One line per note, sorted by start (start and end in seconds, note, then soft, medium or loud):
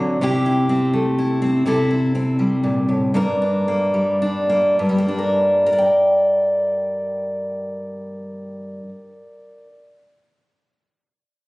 0.00 0.21 D3 medium
0.00 0.18 F#3 medium
0.00 0.21 C4 medium
0.00 0.19 F#4 soft
0.00 0.23 A4 medium
0.21 1.64 C3 medium
0.21 0.69 C4 medium
0.21 0.45 E4 medium
0.21 1.67 G4 medium
0.46 1.17 E4 medium
0.69 1.41 C4 medium
0.93 1.63 A3 medium
1.19 1.63 E4 medium
1.42 1.63 C4 medium
1.66 3.14 C3 medium
1.66 2.14 C4 medium
1.66 1.89 E4 medium
1.66 3.12 A4 medium
1.91 3.12 E4 medium
2.15 3.12 C4 medium
2.39 3.93 G3 medium
2.64 2.88 A#2 medium
2.88 3.14 A2 medium
3.14 4.78 G2 medium
3.14 3.67 A#3 medium
3.14 3.40 D4 medium
3.14 4.76 A#4 medium
3.42 4.21 D4 soft
3.68 4.48 A#3 medium
3.94 4.75 G3 medium
4.22 5.07 D4 medium
4.50 4.97 A#3 medium
4.79 8.79 G2 medium
4.89 8.89 G3 medium
4.98 5.66 A#3 medium
5.08 5.72 D4 medium
5.18 5.66 A#4 medium
5.66 9.66 A#4 medium
5.73 9.72 D5 medium
5.78 9.78 G5 medium